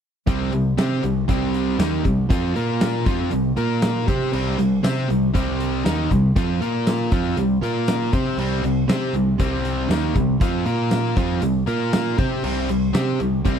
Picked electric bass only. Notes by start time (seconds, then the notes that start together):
0.27 C2
0.52 C2
0.78 C3
1.04 C2
1.29 C2
1.79 D#2
2.05 C2
2.30 F2
2.56 A#2
3.07 F2
3.33 C2
3.58 A#2
4.08 C3
4.33 C2
4.58 C2
4.84 C3
5.10 C2
5.35 C2
5.86 D#2
6.11 C2
6.36 F2
6.61 A#2
7.12 F2
7.37 C2
7.62 A#2
8.13 C3
8.37 C2
8.63 C2
8.88 C3
9.13 C2
9.39 C2
9.89 D#2
10.16 C2
10.41 F2
10.66 A#2
11.17 F2
11.42 C2
11.68 A#2
12.18 C3
12.44 C2
12.70 C2
12.94 C3
13.21 C2
13.46 C2